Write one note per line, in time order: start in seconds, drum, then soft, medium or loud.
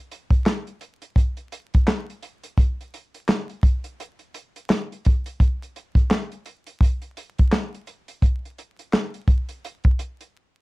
0.11 closed hi-hat medium
0.31 kick loud
0.31 closed hi-hat medium
0.46 snare loud
0.46 clap medium
0.67 closed hi-hat soft
0.81 closed hi-hat medium
1.02 closed hi-hat medium
1.16 kick loud
1.16 closed hi-hat medium
1.37 closed hi-hat soft
1.52 closed hi-hat medium
1.74 kick loud
1.74 closed hi-hat medium
1.88 snare loud
1.88 clap medium
2.10 closed hi-hat soft
2.23 closed hi-hat medium
2.44 closed hi-hat medium
2.58 kick loud
2.58 closed hi-hat medium
2.81 closed hi-hat soft
2.94 closed hi-hat medium
3.14 closed hi-hat medium
3.29 snare loud
3.29 clap medium
3.49 closed hi-hat soft
3.63 kick loud
3.63 closed hi-hat medium
3.84 closed hi-hat medium
4.00 closed hi-hat medium
4.19 closed hi-hat soft
4.34 closed hi-hat medium
4.56 closed hi-hat medium
4.70 snare loud
4.70 clap medium
4.92 closed hi-hat soft
5.05 kick loud
5.05 closed hi-hat medium
5.26 closed hi-hat medium
5.40 kick loud
5.40 closed hi-hat medium
5.63 closed hi-hat soft
5.76 closed hi-hat medium
5.95 kick loud
5.95 closed hi-hat medium
6.11 snare loud
6.11 clap medium
6.32 closed hi-hat soft
6.46 closed hi-hat medium
6.66 closed hi-hat medium
6.81 kick loud
6.81 closed hi-hat medium
7.02 closed hi-hat soft
7.17 closed hi-hat medium
7.38 kick loud
7.38 closed hi-hat medium
7.52 snare loud
7.52 clap medium
7.75 closed hi-hat soft
7.87 closed hi-hat medium
8.08 closed hi-hat medium
8.22 kick loud
8.22 closed hi-hat medium
8.45 closed hi-hat soft
8.58 closed hi-hat medium
8.79 closed hi-hat medium
8.93 snare loud
8.93 clap medium
9.14 closed hi-hat soft
9.28 kick loud
9.28 closed hi-hat medium
9.49 closed hi-hat medium
9.65 closed hi-hat medium
9.84 kick loud
9.84 closed hi-hat soft
9.99 closed hi-hat medium
10.21 closed hi-hat medium